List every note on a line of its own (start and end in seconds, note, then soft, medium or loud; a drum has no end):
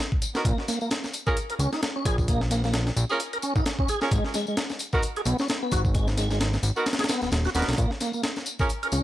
0.12 kick medium
0.22 closed hi-hat medium
0.22 tambourine medium
0.35 0.43 B3 medium
0.35 0.43 D#4 medium
0.35 0.43 F#4 medium
0.35 0.43 A#4 medium
0.35 snare medium
0.35 tambourine soft
0.45 0.53 A#1 loud
0.45 0.58 A#3 medium
0.45 kick loud
0.45 closed hi-hat medium
0.45 tambourine soft
0.58 snare soft
0.68 0.79 A#3 loud
0.68 snare soft
0.68 closed hi-hat medium
0.68 tambourine medium
0.81 0.90 A#3 medium
0.81 tambourine soft
0.91 snare loud
0.91 closed hi-hat medium
0.91 tambourine soft
1.04 snare soft
1.04 tambourine soft
1.13 closed hi-hat medium
1.13 tambourine medium
1.26 1.35 C#4 medium
1.26 1.35 F4 medium
1.26 1.35 G#4 medium
1.26 1.35 A#4 loud
1.26 kick medium
1.26 tambourine soft
1.37 closed hi-hat medium
1.37 tambourine soft
1.50 1.55 A#4 medium
1.50 closed hi-hat soft
1.59 1.68 C#2 medium
1.59 1.71 C#4 loud
1.59 closed hi-hat medium
1.59 tambourine medium
1.73 1.81 D#4 medium
1.73 snare soft
1.73 tambourine soft
1.82 snare loud
1.82 closed hi-hat medium
1.82 tambourine soft
1.96 2.05 C#4 medium
2.05 2.91 A#1 loud
2.05 2.16 G#4 medium
2.05 kick medium
2.05 closed hi-hat medium
2.05 tambourine medium
2.18 kick medium
2.18 tambourine soft
2.28 2.41 A#3 medium
2.28 kick loud
2.28 closed hi-hat medium
2.28 tambourine soft
2.41 snare soft
2.51 2.62 A#3 loud
2.51 snare soft
2.51 closed hi-hat medium
2.51 tambourine medium
2.64 2.73 A#3 medium
2.64 snare soft
2.64 tambourine soft
2.74 snare loud
2.74 closed hi-hat medium
2.74 tambourine soft
2.87 snare medium
2.87 tambourine soft
2.96 3.05 A#1 loud
2.96 closed hi-hat medium
2.96 tambourine medium
3.09 3.18 C#4 medium
3.09 3.18 F4 medium
3.09 3.18 G#4 medium
3.09 3.18 A#4 loud
3.09 tambourine soft
3.19 closed hi-hat medium
3.19 tambourine soft
3.33 3.38 A#4 medium
3.33 closed hi-hat soft
3.42 3.54 C#4 loud
3.42 closed hi-hat medium
3.42 tambourine medium
3.55 3.62 G#1 medium
3.55 3.64 D#4 medium
3.55 kick medium
3.55 tambourine soft
3.66 snare loud
3.66 closed hi-hat medium
3.66 tambourine soft
3.79 3.89 C#4 medium
3.79 kick medium
3.88 4.00 G#4 medium
3.88 closed hi-hat medium
3.88 tambourine medium
4.01 4.10 C#4 medium
4.01 4.10 F4 medium
4.01 4.10 G#4 medium
4.01 4.10 A#4 medium
4.01 snare medium
4.01 tambourine soft
4.11 4.20 G#1 loud
4.11 4.24 G#3 medium
4.11 kick loud
4.11 closed hi-hat medium
4.11 tambourine soft
4.24 snare soft
4.34 4.45 G#3 loud
4.34 snare soft
4.34 closed hi-hat medium
4.34 tambourine medium
4.47 4.56 G#3 medium
4.47 tambourine soft
4.57 snare loud
4.57 closed hi-hat medium
4.57 tambourine soft
4.69 snare soft
4.69 tambourine soft
4.79 closed hi-hat medium
4.79 tambourine medium
4.93 5.01 B3 loud
4.93 5.02 D#4 medium
4.93 5.02 F#4 medium
4.93 5.02 A#4 loud
4.93 kick medium
4.93 tambourine soft
5.02 closed hi-hat medium
5.02 tambourine soft
5.16 5.21 G#4 medium
5.16 closed hi-hat soft
5.25 5.34 B1 medium
5.25 5.37 B3 loud
5.25 closed hi-hat medium
5.25 tambourine medium
5.38 5.48 C#4 medium
5.38 snare soft
5.38 tambourine soft
5.48 snare loud
5.48 closed hi-hat medium
5.48 tambourine soft
5.62 5.72 B3 medium
5.72 6.58 G#1 loud
5.72 5.83 F#4 medium
5.72 kick medium
5.72 closed hi-hat medium
5.72 tambourine medium
5.85 kick medium
5.85 tambourine soft
5.94 6.07 G#3 medium
5.94 kick loud
5.94 closed hi-hat medium
5.94 tambourine soft
6.07 snare soft
6.07 tambourine soft
6.17 6.29 G#3 loud
6.17 snare soft
6.17 closed hi-hat medium
6.17 tambourine medium
6.30 6.39 G#3 medium
6.30 snare soft
6.30 tambourine soft
6.40 snare loud
6.40 closed hi-hat medium
6.40 tambourine soft
6.53 snare medium
6.53 tambourine soft
6.63 6.71 G#1 loud
6.63 closed hi-hat medium
6.63 tambourine medium
6.76 6.85 B3 medium
6.76 6.85 D#4 medium
6.76 6.85 F#4 medium
6.76 6.85 A#4 loud
6.76 tambourine soft
6.86 snare medium
6.86 closed hi-hat medium
6.86 tambourine soft
6.93 snare medium
6.93 closed hi-hat medium
6.99 7.05 G#4 medium
6.99 snare medium
6.99 closed hi-hat medium
6.99 tambourine soft
7.04 snare medium
7.04 closed hi-hat medium
7.09 7.21 B3 medium
7.09 snare loud
7.09 closed hi-hat medium
7.09 tambourine medium
7.21 7.30 D#1 soft
7.21 7.31 B3 medium
7.21 snare soft
7.21 tambourine soft
7.32 7.48 D#1 medium
7.32 snare loud
7.32 closed hi-hat medium
7.32 tambourine soft
7.45 7.50 F#4 loud
7.45 snare soft
7.45 tambourine soft
7.55 7.63 D#1 medium
7.55 7.66 B3 medium
7.55 7.62 B3 medium
7.55 7.66 D#4 medium
7.55 7.66 F#4 medium
7.55 7.66 A#4 loud
7.55 snare medium
7.55 closed hi-hat medium
7.55 tambourine medium
7.62 snare medium
7.62 closed hi-hat medium
7.68 7.74 B1 loud
7.68 snare medium
7.68 closed hi-hat medium
7.68 tambourine soft
7.73 snare medium
7.73 closed hi-hat medium
7.77 7.86 A#1 loud
7.77 7.90 A#3 medium
7.77 kick loud
7.77 closed hi-hat medium
7.77 tambourine soft
7.91 snare soft
8.00 8.12 A#3 loud
8.00 snare soft
8.00 closed hi-hat medium
8.00 tambourine medium
8.13 8.22 A#3 medium
8.13 tambourine soft
8.23 snare loud
8.23 closed hi-hat medium
8.23 tambourine soft
8.36 snare soft
8.36 tambourine soft
8.46 closed hi-hat medium
8.46 tambourine medium
8.59 8.68 C#4 medium
8.59 8.68 F4 medium
8.59 8.68 G#4 medium
8.59 8.68 A#4 loud
8.59 kick medium
8.59 tambourine soft
8.69 closed hi-hat medium
8.69 tambourine soft
8.83 8.88 A#4 medium
8.83 closed hi-hat soft
8.92 9.01 C#2 medium
8.92 9.03 C#4 loud
8.92 closed hi-hat medium
8.92 tambourine medium